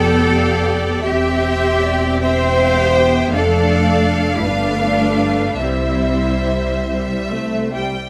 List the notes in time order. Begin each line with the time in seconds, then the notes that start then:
Already playing: F1 B3 G4 A4 D5 G5
0.01 D5
0.36 F5
0.70 D5
1.03 E1 C4 G4 E5 G5
1.41 C5
1.83 D5
2.22 C4 G4 C5 E5 G5
2.59 F5
2.79 B3
2.95 G5
3.32 F1 A3 D4 A4 D5 F5
4.37 E4
4.43 G1 A3 D4 B4 F5
5.58 C2 G3 C4 E4 C5 E5
6.91 G3 E5
7.33 A3
7.72 G3 G5